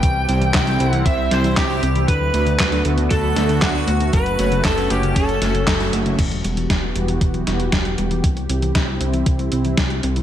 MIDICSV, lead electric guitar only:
0, 0, Header, 1, 2, 480
1, 0, Start_track
1, 0, Key_signature, 1, "minor"
1, 0, Tempo, 512821
1, 31, Time_signature, 4, 2, 24, 8
1, 9572, End_track
2, 0, Start_track
2, 0, Title_t, "Lead electric guitar"
2, 0, Program_c, 0, 29
2, 0, Note_on_c, 0, 79, 112
2, 496, Note_off_c, 0, 79, 0
2, 507, Note_on_c, 0, 79, 103
2, 835, Note_off_c, 0, 79, 0
2, 835, Note_on_c, 0, 78, 103
2, 955, Note_off_c, 0, 78, 0
2, 988, Note_on_c, 0, 76, 107
2, 1231, Note_on_c, 0, 72, 97
2, 1237, Note_off_c, 0, 76, 0
2, 1454, Note_off_c, 0, 72, 0
2, 1471, Note_on_c, 0, 67, 92
2, 1918, Note_off_c, 0, 67, 0
2, 1949, Note_on_c, 0, 71, 86
2, 2632, Note_off_c, 0, 71, 0
2, 2907, Note_on_c, 0, 69, 101
2, 3387, Note_on_c, 0, 66, 99
2, 3404, Note_off_c, 0, 69, 0
2, 3868, Note_on_c, 0, 71, 115
2, 3883, Note_off_c, 0, 66, 0
2, 4346, Note_off_c, 0, 71, 0
2, 4349, Note_on_c, 0, 69, 96
2, 4592, Note_on_c, 0, 67, 89
2, 4598, Note_off_c, 0, 69, 0
2, 4835, Note_on_c, 0, 69, 93
2, 4839, Note_off_c, 0, 67, 0
2, 5515, Note_off_c, 0, 69, 0
2, 9572, End_track
0, 0, End_of_file